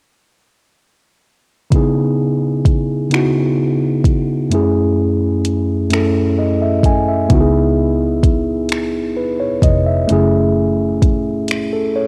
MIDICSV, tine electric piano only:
0, 0, Header, 1, 2, 480
1, 0, Start_track
1, 0, Tempo, 930233
1, 887, Time_signature, 6, 3, 24, 8
1, 6229, End_track
2, 0, Start_track
2, 0, Title_t, "Tine electric piano"
2, 0, Program_c, 0, 4
2, 880, Note_on_c, 0, 49, 75
2, 886, Note_on_c, 0, 59, 66
2, 894, Note_on_c, 0, 63, 64
2, 900, Note_on_c, 0, 64, 65
2, 907, Note_on_c, 0, 68, 77
2, 991, Control_c, 0, 64, 127
2, 1321, Note_off_c, 0, 49, 0
2, 1324, Note_off_c, 0, 59, 0
2, 1328, Note_off_c, 0, 63, 0
2, 1331, Note_off_c, 0, 64, 0
2, 1334, Note_off_c, 0, 68, 0
2, 1598, Note_on_c, 0, 49, 59
2, 1605, Note_on_c, 0, 59, 53
2, 1612, Note_on_c, 0, 63, 56
2, 1620, Note_on_c, 0, 64, 57
2, 1626, Note_on_c, 0, 66, 69
2, 2040, Note_off_c, 0, 49, 0
2, 2043, Note_off_c, 0, 59, 0
2, 2047, Note_off_c, 0, 63, 0
2, 2051, Note_off_c, 0, 64, 0
2, 2054, Note_off_c, 0, 66, 0
2, 2319, Note_on_c, 0, 42, 77
2, 2326, Note_on_c, 0, 57, 68
2, 2333, Control_c, 0, 64, 0
2, 2333, Note_on_c, 0, 61, 67
2, 2339, Note_on_c, 0, 64, 65
2, 2347, Note_on_c, 0, 68, 81
2, 2410, Control_c, 0, 64, 127
2, 2761, Note_off_c, 0, 42, 0
2, 2764, Note_off_c, 0, 57, 0
2, 2768, Note_off_c, 0, 61, 0
2, 2770, Note_off_c, 0, 64, 0
2, 2774, Note_off_c, 0, 68, 0
2, 3039, Note_on_c, 0, 42, 60
2, 3045, Note_on_c, 0, 57, 57
2, 3053, Note_on_c, 0, 61, 58
2, 3059, Note_on_c, 0, 64, 56
2, 3066, Note_on_c, 0, 69, 68
2, 3295, Note_on_c, 0, 75, 51
2, 3406, Note_off_c, 0, 75, 0
2, 3415, Note_on_c, 0, 76, 53
2, 3480, Note_off_c, 0, 42, 0
2, 3483, Note_off_c, 0, 57, 0
2, 3487, Note_off_c, 0, 61, 0
2, 3491, Note_off_c, 0, 64, 0
2, 3494, Note_off_c, 0, 69, 0
2, 3525, Note_off_c, 0, 76, 0
2, 3538, Note_on_c, 0, 80, 55
2, 3647, Note_off_c, 0, 80, 0
2, 3655, Note_on_c, 0, 76, 53
2, 3760, Note_on_c, 0, 59, 78
2, 3769, Note_on_c, 0, 63, 68
2, 3774, Control_c, 0, 64, 0
2, 3778, Note_on_c, 0, 64, 68
2, 3787, Note_on_c, 0, 66, 67
2, 3811, Note_off_c, 0, 66, 0
2, 3822, Note_on_c, 0, 68, 83
2, 3868, Control_c, 0, 64, 127
2, 3879, Note_off_c, 0, 76, 0
2, 4201, Note_off_c, 0, 59, 0
2, 4205, Note_off_c, 0, 63, 0
2, 4210, Note_off_c, 0, 64, 0
2, 4232, Note_off_c, 0, 68, 0
2, 4730, Note_on_c, 0, 71, 52
2, 4843, Note_off_c, 0, 71, 0
2, 4850, Note_on_c, 0, 73, 54
2, 4962, Note_off_c, 0, 73, 0
2, 4971, Note_on_c, 0, 75, 61
2, 5083, Note_off_c, 0, 75, 0
2, 5090, Note_on_c, 0, 76, 55
2, 5198, Note_on_c, 0, 57, 79
2, 5207, Note_on_c, 0, 61, 64
2, 5214, Control_c, 0, 64, 0
2, 5216, Note_on_c, 0, 64, 69
2, 5225, Note_on_c, 0, 68, 86
2, 5296, Control_c, 0, 64, 127
2, 5317, Note_off_c, 0, 76, 0
2, 5640, Note_off_c, 0, 57, 0
2, 5644, Note_off_c, 0, 61, 0
2, 5649, Note_off_c, 0, 64, 0
2, 5654, Note_off_c, 0, 68, 0
2, 6052, Note_on_c, 0, 69, 56
2, 6164, Note_off_c, 0, 69, 0
2, 6170, Note_on_c, 0, 73, 61
2, 6229, Note_off_c, 0, 73, 0
2, 6229, End_track
0, 0, End_of_file